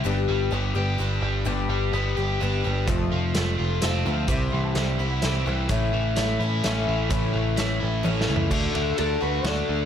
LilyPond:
<<
  \new Staff \with { instrumentName = "Electric slide guitar" } { \time 3/4 \key g \lydian \tempo 4 = 128 r2. | r2. | r2. | r2. |
r2. | r2. | r4 a'8 b'8 d''4 | }
  \new Staff \with { instrumentName = "Reed electric piano" } { \time 3/4 \key g \lydian << { r2. | r2. | r2. | r8 c'''16 a''16 g''8. fis''16 e''4 |
r2. | r2. | r2. | } \\ { r2. | r2. | <f' a' c''>8 r8 <f' a' c''>8 r8 <f' a' c''>8 r8 | <e' g' c''>8 r8 <e' g' c''>8 r8 <e' g' c''>8 r8 |
<e' a' cis''>8 r8 <e' a' cis''>8 r8 <e' a' cis''>8 r8 | <e' a' cis''>8 r8 <e' a' cis''>8 r8 <e' a' cis''>8 r8 | <fis' a' d''>8 r8 <fis' a' d''>8 r8 <fis' a' d''>8 r8 | } >> }
  \new Staff \with { instrumentName = "Twelve-string acoustic guitar" } { \time 3/4 \key g \lydian <g, d g b d' g'>4 <g b d' g'>8 <g b d' g'>8 <g b d' g'>4 | <g, d g b d' g'>4 <g b d' g'>8 <g b d' g'>8 <g b d' g'>8 <g b d' g'>8 | <f, c f a c' f'>4 <f a c' f'>4 <f a c' f'>8 <f a c' f'>8 | <c e g c' e'>4 <e g c' e'>8 <g c' e'>8 <e g c' e'>8 <g c' e'>8 |
<a, e a cis' e'>4 <e a cis' e'>8 <a cis' e'>8 <e a cis' e'>4 | <a, e a cis' e'>4 <e a cis' e'>4 <e a cis' e'>4 | <d a d' fis'>4 <d a d' fis'>8 <a d' fis'>8 <d a d' fis'>4 | }
  \new Staff \with { instrumentName = "Overdriven electric guitar" } { \clef bass \time 3/4 \key g \lydian g,8 g8 b8 g'8 d'8 g8 | g,8 g8 b8 g'8 d'8 g8 | f,8 f8 a8 f'8 c'8 f8 | c8 e8 g8 e'8 c'8 e8 |
a,8 e8 a8 e'8 cis'8 e8 | a,8 e8 a8 e'8 cis'8 e8 | d8 d8 d'8 fis'8 d'8 d8 | }
  \new Staff \with { instrumentName = "Picked electric bass" } { \clef bass \time 3/4 \key g \lydian g,,8 g,,8 g,,8 g,,8 g,,8 g,,8 | g,,8 g,,8 g,,8 g,,8 g,,8 g,,8 | f,,8 f,,8 f,,8 f,,8 f,,8 d,8 | c,8 c,8 c,8 c,8 c,8 c,8 |
a,,8 a,,8 a,,8 a,,8 a,,8 a,,8 | a,,8 a,,8 a,,8 a,,8 a,,8 cis,8 | d,8 d,8 d,8 d,8 d,8 d,8 | }
  \new DrumStaff \with { instrumentName = "Drums" } \drummode { \time 3/4 r4 r4 r4 | r4 r4 r4 | <hh bd>4 <hh sn>4 <hh sn>4 | <hh bd>4 <hh sn>4 <hh sn>4 |
<hh bd>4 <hh sn>4 <hh sn>4 | <hh bd>4 <hh sn>4 \tuplet 3/2 { tommh8 sn8 tomfh8 } | <cymc bd>8 cymr8 cymr4 <cymr sn>4 | }
>>